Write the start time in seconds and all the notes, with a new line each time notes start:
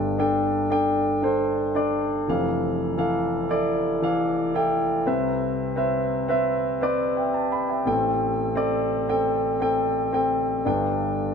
Already playing: G1 G2 D4 A4 G5
0.18 D4 A4 G5
0.70 D4 A4 G5
1.22 D4 A4 C5
1.75 D4 A4 D5
2.28 F1 F2 E3 A4 F5
2.97 E3 A4 F5
3.49 E4 A4 D5
4.02 E3 A4 F5
4.54 E4 A4 G5
5.06 C2 C3 C4 B4 E5
5.76 C4 B4 E5
6.28 C4 B4 E5
6.81 C4 B4 D5
7.17 E5 G5
7.34 A5
7.52 G5 B5
7.69 E5 G5
7.85 A1 A2 B3 A4 G5
7.92 C4
8.55 C4 A4 D5
9.08 C4 A4 G5
9.60 C4 A4 G5
10.13 C4 A4 G5
10.65 G1 G2 D4 A4 G5